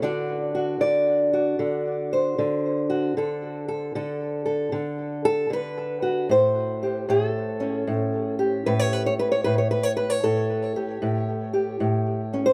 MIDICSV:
0, 0, Header, 1, 2, 480
1, 0, Start_track
1, 0, Tempo, 785340
1, 20, Time_signature, 4, 2, 24, 8
1, 7659, End_track
2, 0, Start_track
2, 0, Title_t, "Steel-string acoustic guitar"
2, 0, Program_c, 0, 25
2, 14, Note_on_c, 0, 50, 69
2, 17, Note_on_c, 0, 74, 72
2, 23, Note_on_c, 0, 62, 45
2, 27, Note_on_c, 0, 66, 46
2, 332, Note_off_c, 0, 66, 0
2, 334, Note_on_c, 0, 66, 46
2, 487, Note_off_c, 0, 74, 0
2, 490, Note_off_c, 0, 50, 0
2, 493, Note_on_c, 0, 50, 64
2, 495, Note_on_c, 0, 74, 84
2, 813, Note_off_c, 0, 66, 0
2, 816, Note_on_c, 0, 66, 50
2, 970, Note_off_c, 0, 50, 0
2, 972, Note_on_c, 0, 50, 68
2, 1285, Note_off_c, 0, 74, 0
2, 1301, Note_on_c, 0, 72, 53
2, 1450, Note_off_c, 0, 50, 0
2, 1457, Note_on_c, 0, 50, 76
2, 1763, Note_off_c, 0, 66, 0
2, 1770, Note_on_c, 0, 66, 51
2, 1915, Note_off_c, 0, 62, 0
2, 1915, Note_off_c, 0, 66, 0
2, 1920, Note_off_c, 0, 72, 0
2, 1930, Note_off_c, 0, 50, 0
2, 1937, Note_on_c, 0, 50, 75
2, 1944, Note_on_c, 0, 69, 49
2, 2249, Note_off_c, 0, 69, 0
2, 2252, Note_on_c, 0, 69, 52
2, 2409, Note_off_c, 0, 50, 0
2, 2416, Note_on_c, 0, 50, 72
2, 2417, Note_off_c, 0, 69, 0
2, 2419, Note_on_c, 0, 69, 47
2, 2721, Note_off_c, 0, 69, 0
2, 2723, Note_on_c, 0, 69, 47
2, 2879, Note_off_c, 0, 50, 0
2, 2886, Note_on_c, 0, 50, 75
2, 3207, Note_off_c, 0, 69, 0
2, 3209, Note_on_c, 0, 69, 103
2, 3355, Note_off_c, 0, 50, 0
2, 3362, Note_on_c, 0, 50, 70
2, 3375, Note_off_c, 0, 69, 0
2, 3382, Note_on_c, 0, 71, 92
2, 3682, Note_on_c, 0, 66, 56
2, 3831, Note_off_c, 0, 66, 0
2, 3847, Note_off_c, 0, 50, 0
2, 3847, Note_on_c, 0, 45, 73
2, 3855, Note_off_c, 0, 71, 0
2, 3858, Note_on_c, 0, 72, 82
2, 4173, Note_on_c, 0, 67, 51
2, 4329, Note_off_c, 0, 45, 0
2, 4331, Note_on_c, 0, 45, 73
2, 4335, Note_off_c, 0, 72, 0
2, 4336, Note_off_c, 0, 67, 0
2, 4338, Note_on_c, 0, 68, 83
2, 4448, Note_off_c, 0, 68, 0
2, 4448, Note_on_c, 0, 69, 83
2, 4646, Note_on_c, 0, 61, 52
2, 4810, Note_off_c, 0, 45, 0
2, 4813, Note_on_c, 0, 45, 72
2, 5125, Note_off_c, 0, 69, 0
2, 5127, Note_on_c, 0, 67, 53
2, 5291, Note_off_c, 0, 45, 0
2, 5295, Note_on_c, 0, 71, 85
2, 5299, Note_on_c, 0, 45, 72
2, 5375, Note_off_c, 0, 71, 0
2, 5375, Note_on_c, 0, 73, 105
2, 5457, Note_off_c, 0, 73, 0
2, 5457, Note_on_c, 0, 71, 80
2, 5537, Note_off_c, 0, 71, 0
2, 5540, Note_on_c, 0, 73, 85
2, 5581, Note_off_c, 0, 73, 0
2, 5619, Note_on_c, 0, 71, 87
2, 5692, Note_off_c, 0, 71, 0
2, 5694, Note_on_c, 0, 73, 86
2, 5755, Note_off_c, 0, 61, 0
2, 5755, Note_off_c, 0, 67, 0
2, 5762, Note_off_c, 0, 73, 0
2, 5772, Note_on_c, 0, 71, 89
2, 5774, Note_off_c, 0, 45, 0
2, 5781, Note_on_c, 0, 45, 72
2, 5853, Note_off_c, 0, 71, 0
2, 5856, Note_on_c, 0, 73, 75
2, 5923, Note_off_c, 0, 73, 0
2, 5934, Note_on_c, 0, 71, 86
2, 6010, Note_off_c, 0, 71, 0
2, 6010, Note_on_c, 0, 73, 80
2, 6057, Note_off_c, 0, 73, 0
2, 6091, Note_on_c, 0, 71, 81
2, 6171, Note_off_c, 0, 71, 0
2, 6171, Note_on_c, 0, 73, 81
2, 6249, Note_off_c, 0, 45, 0
2, 6255, Note_on_c, 0, 45, 64
2, 6257, Note_on_c, 0, 69, 81
2, 6568, Note_off_c, 0, 69, 0
2, 6577, Note_on_c, 0, 67, 49
2, 6722, Note_off_c, 0, 73, 0
2, 6727, Note_off_c, 0, 45, 0
2, 6735, Note_on_c, 0, 45, 75
2, 7042, Note_off_c, 0, 67, 0
2, 7050, Note_on_c, 0, 67, 46
2, 7206, Note_off_c, 0, 45, 0
2, 7213, Note_on_c, 0, 45, 72
2, 7540, Note_on_c, 0, 61, 53
2, 7614, Note_on_c, 0, 72, 88
2, 7659, Note_off_c, 0, 45, 0
2, 7659, Note_off_c, 0, 61, 0
2, 7659, Note_off_c, 0, 67, 0
2, 7659, Note_off_c, 0, 72, 0
2, 7659, End_track
0, 0, End_of_file